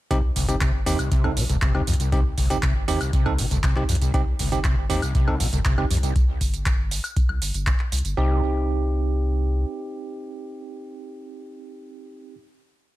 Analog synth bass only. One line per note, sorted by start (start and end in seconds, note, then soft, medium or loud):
0.11 0.31 C2 medium
0.36 0.95 G1 loud
1.37 1.47 A#1 medium
1.50 1.59 G1 medium
1.62 1.82 G1 medium
1.87 2.33 C2 loud
2.38 2.96 G1 loud
3.26 3.36 C2 medium
3.39 3.49 G1 medium
3.51 3.71 G1 loud
3.76 3.86 C2 medium
3.89 4.09 C2 loud
4.14 4.34 C2 medium
4.39 4.98 G1 loud
5.40 5.50 A#1 medium
5.53 5.63 G1 medium
5.65 5.85 G1 medium
5.91 6.37 C2 loud
6.41 7.00 G1 loud
7.29 7.39 C2 loud
7.42 7.52 G1 medium
7.54 7.74 G1 loud
7.92 8.02 C2 medium
8.05 8.15 G1 medium
8.17 9.65 C2 medium